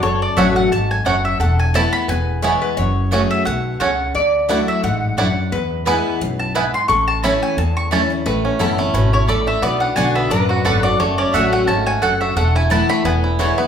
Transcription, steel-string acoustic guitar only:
0.03 0.68 F#2 medium
0.37 0.70 F#3 medium
0.37 0.70 A3 medium
0.37 0.71 C#4 loud
0.37 0.71 F#4 loud
0.73 1.05 G#2 loud
1.06 1.39 F#2 medium
1.41 2.06 E2 medium
1.74 2.07 E3 loud
1.74 2.08 A3 medium
1.74 2.08 B3 loud
1.74 2.08 E4 loud
2.09 2.75 E2 loud
2.42 2.76 E3 medium
2.42 2.76 G#3 medium
2.42 2.76 B3 medium
2.42 2.77 E4 loud
2.77 3.43 F#2 medium
3.12 3.45 F#3 medium
3.12 3.45 A3 medium
3.12 3.45 C#4 loud
3.12 3.46 G#4 medium
3.47 3.79 B2 loud
3.81 4.13 C#3 medium
4.15 4.80 D3 medium
4.49 4.82 F#3 medium
4.49 4.82 A3 medium
4.49 4.82 E4 loud
4.49 4.83 F#4 loud
4.84 5.16 G#2 loud
5.18 5.51 F#2 medium
5.52 6.18 E2 medium
5.86 6.19 E3 medium
5.86 6.20 G#3 loud
5.86 6.20 B3 loud
5.86 6.20 E4 loud
6.21 6.54 F#2 loud
6.56 6.88 G#2 medium
6.89 7.55 A2 medium
7.24 7.56 E3 medium
7.24 7.57 A3 loud
7.24 7.57 C#4 loud
7.24 7.57 E4 medium
7.58 8.23 E2 loud
7.91 8.10 E3 medium
7.91 8.10 A3 medium
7.91 8.10 C#4 medium
7.91 8.09 E4 medium
8.10 8.26 C#4 soft
8.10 8.25 E4 medium
8.26 8.91 A2 medium
8.59 8.78 E3 loud
8.59 8.78 B3 medium
8.59 8.79 C#4 loud
8.59 8.77 E4 loud
8.78 8.94 C#4 medium
8.78 8.94 E4 medium
8.95 9.27 B2 loud
9.29 9.62 A2 medium
9.63 10.28 B2 medium
9.96 10.29 D3 medium
9.96 10.30 B3 medium
9.96 10.30 D4 loud
9.96 10.30 F#4 loud
10.31 10.97 F#2 loud
10.65 10.84 D3 medium
10.65 10.84 B3 medium
10.65 10.84 D4 medium
10.65 10.82 F#4 medium
10.84 11.00 D4 medium
10.84 10.99 F#4 medium
11.00 11.65 F#2 medium
11.34 11.67 F#3 medium
11.34 11.67 A3 loud
11.34 11.67 C#4 loud
11.34 11.68 F#4 loud
11.68 12.01 G#2 loud
12.03 12.35 F#2 medium
12.37 13.02 E2 medium
12.70 13.03 E3 medium
12.70 13.04 A3 loud
12.70 13.04 B3 loud
12.70 13.04 E4 loud
13.05 13.67 E2 loud
13.39 13.57 E3 medium
13.39 13.58 G#3 medium
13.39 13.58 B3 medium
13.39 13.56 E4 loud
13.58 13.67 B3 soft
13.58 13.67 E4 medium

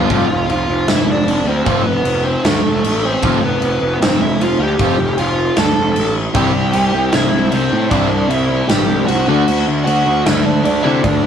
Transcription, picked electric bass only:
0.10 0.26 F1 medium
0.29 0.45 F1 medium
0.49 0.65 F1 medium
0.68 0.84 F1 medium
0.88 1.04 F1 medium
1.07 1.23 F1 medium
1.25 1.42 F1 medium
1.44 1.61 D2 medium
1.66 1.82 F1 loud
1.84 2.01 F1 medium
2.04 2.36 F1 medium
2.45 2.60 D2 loud
2.65 2.80 F1 medium
2.84 3.15 A1 medium
3.23 3.38 F1 loud
3.42 3.58 F1 medium
3.62 3.77 F1 medium
3.81 3.97 F1 medium
4.01 4.17 F1 medium
4.20 4.36 F1 medium
4.39 4.55 F1 medium
4.59 4.75 D2 medium
4.79 4.95 F1 medium
4.99 5.14 F1 medium
5.19 5.50 F1 medium
5.57 5.73 D2 medium
5.77 5.92 F1 medium
5.97 6.28 A1 medium
6.35 6.51 C2 loud
6.55 6.70 C2 medium
6.74 6.90 C2 loud
6.94 7.09 C2 medium
7.14 7.29 C2 loud
7.33 7.49 C2 medium
7.52 7.68 C2 medium
7.72 7.88 A2 medium
7.91 8.07 C2 loud
8.09 8.26 C2 medium
8.29 8.61 C2 loud
8.69 8.85 A1 loud
8.87 9.04 C2 medium
9.09 9.24 C2 medium
9.28 9.44 D2 medium
9.49 9.64 D2 medium
9.68 9.83 D2 medium
9.87 10.02 D2 medium
10.07 10.22 D2 medium
10.26 10.42 D2 loud
10.46 10.61 D2 medium
10.66 10.81 D2 medium
10.85 11.00 C3 medium
11.04 11.20 D2 loud
11.23 11.27 D2 medium

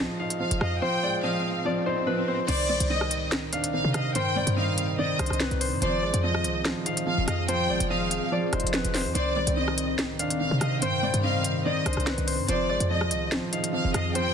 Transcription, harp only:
0.00 0.82 C5 medium
0.00 1.09 D#5 medium
0.20 0.60 F5 medium
0.61 2.27 F5 medium
0.82 1.86 C5 loud
1.03 1.30 D5 medium
1.24 1.72 D#5 medium
1.66 2.69 D5 medium
1.86 2.13 C5 medium
2.07 2.34 B4 medium
2.28 2.47 C5 medium
2.48 4.15 C5 medium
2.69 2.96 D5 medium
2.90 4.42 D#5 medium
3.52 3.94 F5 medium
3.94 5.60 F5 medium
4.16 5.19 C5 loud
4.36 4.63 D5 medium
4.57 5.05 D#5 medium
4.99 6.02 D5 medium
5.19 5.47 C5 medium
5.41 5.66 B4 medium
5.60 5.82 C5 medium
5.83 7.48 C5 medium
6.03 6.30 D5 medium
6.24 7.76 D#5 medium
6.86 7.27 F5 medium
7.27 8.94 F5 medium
7.48 8.52 C5 loud
7.70 7.96 D5 medium
7.90 8.38 D#5 medium
8.32 9.36 D5 medium
8.53 8.80 C5 medium
8.74 9.01 B4 medium
8.95 9.14 C5 medium
9.15 10.82 C5 loud
9.36 9.63 D5 medium
9.57 11.09 D#5 medium
10.19 10.60 F5 medium
10.61 12.27 F5 medium
10.82 11.86 C5 loud
11.03 11.30 D5 medium
11.24 11.71 D#5 medium
11.65 12.69 D5 medium
11.86 12.13 C5 medium
12.07 12.33 B4 medium
12.27 12.49 C5 medium
12.49 14.15 C5 medium
12.69 12.96 D5 medium
12.90 14.34 D#5 medium
13.52 13.93 F5 medium
13.94 14.34 F5 medium
14.15 14.34 C5 loud

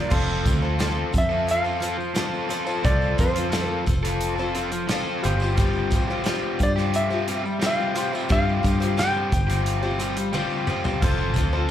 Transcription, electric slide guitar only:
1.18 1.51 E5 medium
1.51 2.90 F5 loud
2.85 3.20 D5 loud
3.20 3.68 C5 medium
3.68 3.84 A#4 medium
6.63 6.72 D5 medium
6.96 7.65 E5 medium
7.67 8.15 F5 medium
8.15 8.31 E5 medium
8.32 8.99 F5 loud
8.99 9.62 G5 medium

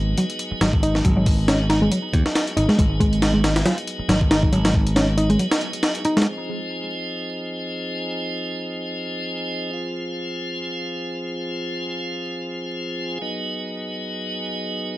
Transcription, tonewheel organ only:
0.00 6.22 F#3 medium
0.00 6.22 B3 medium
0.00 6.23 D#4 medium
0.00 6.22 G#4 medium
6.27 13.18 F3 medium
6.27 13.18 C4 medium
6.27 9.71 D#4 medium
6.27 14.97 G#4 medium
9.73 13.18 F4 medium
13.22 14.97 F#3 medium
13.22 14.97 B3 medium
13.22 14.97 D#4 medium

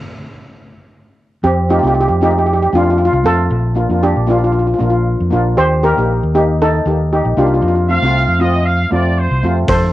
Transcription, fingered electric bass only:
1.44 1.79 F2 loud
1.83 2.06 C2 medium
2.09 2.66 F2 medium
2.73 3.08 F2 medium
3.13 3.23 C2 loud
3.25 3.48 F2 medium
3.50 3.85 A#1 loud
3.90 4.13 F2 medium
4.16 4.72 A#1 medium
4.80 5.15 A#1 medium
5.20 5.30 F2 medium
5.32 5.54 A#1 loud
5.58 5.92 D#2 loud
5.97 6.20 A#1 medium
6.23 6.79 D#2 medium
6.86 7.21 D#2 medium
7.25 7.36 A#1 loud
7.37 7.60 C2 medium
7.62 7.97 F2 loud
8.02 8.25 C2 medium
8.28 8.84 F2 medium
8.92 9.27 F2 medium
9.31 9.42 C2 loud
9.43 9.66 F2 medium
9.68 9.93 F2 loud

